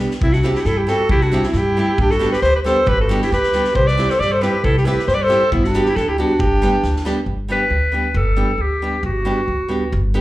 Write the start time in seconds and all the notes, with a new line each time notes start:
Already playing: G3 B3
0.00 D4 G4
0.11 snare
0.21 C2 C4 E4, kick
0.33 D4 F#4, snare
0.43 G3 C4 E4 G4, snare
0.55 D4 E4 G4, snare
0.59 E4 F#4 G4
0.65 G2 E4 A4, snare
0.78 E4 G4
0.87 G3 C4 E4 F#4 G4 A4, snare
1.09 C2 E4 G4, kick
1.21 D4 F#4, snare
1.31 G3 C4 E4 G4, snare
1.43 C4 E4, snare
1.53 G2 E4, snare
1.57 G4
1.77 G3 C4 E4 G4
1.98 G1 D4 G4, kick
2.10 F#4 A4, snare
2.19 G3 B3 D4 G4, snare
2.32 G4 B4, snare
2.42 D2 G4 C5, snare
2.55 G4 B4
2.64 G3 B3 D4 G4 A4 C5, snare
2.87 G1 G4 B4, kick
3.00 F#4 A4
3.09 G3 B3 D4 G4, snare
3.22 E4 G4, snare
3.32 D2 G4 B4, snare
3.43 snare
3.53 G3 B3 D4 G4, snare
3.64 snare
3.75 C2 G4 C5, kick
3.88 B4 D5, snare
3.97 G3 C4 E4 G4, snare
4.10 A4 C5, snare
4.19 G2 G4 D5, snare
4.32 A4 C5
4.41 G3 C4 E4 G4 B4, snare
4.64 C2 E4 A4, kick
4.77 E4 G4, snare
4.85 G3 C4 E4 G4 B4, snare
4.99 snare
5.08 G2 G4 C5, snare
5.15 B4 D5
5.23 A4 C5
5.28 G3 C4 E4 G4, snare
5.52 G1 B3 E4, kick
5.64 D4 F#4, snare
5.73 G3 B3 D4 G4, snare
5.85 E4 G4, snare
5.96 D2 D4 A4, snare
6.09 E4 G4
6.18 G3 B3 D4 F#4 G4
6.39 G1 D4 G4, kick
6.62 G3 B3 D4 G4, snare
6.83 D2, snare
6.96 snare
7.05 G3 B3 D4 G4, snare
7.26 G1
7.48 G3 B3 D4 G4 B4
7.70 D2
7.92 G3 B3 D4 G4
8.14 G1 A4
8.36 G3 B3 D4 G4
8.58 D2 G4
8.82 G3 B3 D4 G4
9.03 G1 F#4
9.25 G3 B3 D4 G4
9.48 D2
9.68 G3 B3 D4 G4
9.92 G1
10.14 G3 B3 D4 G4